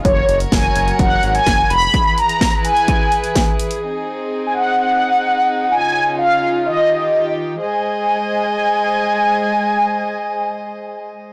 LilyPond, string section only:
\new Staff \with { instrumentName = "String section" } { \time 4/4 \key aes \mixolydian \tempo 4 = 127 << { <ges ges' des''>1 | <e e' b'>1 | c'1 | <des des' f'>2 <ees g'>2 |
<aes aes' c'' ees''>1~ | <aes aes' c'' ees''>1 | } \\ { bes'1 | gis'1 | ees'1~ | ees'1 |
r1 | r1 | } >> }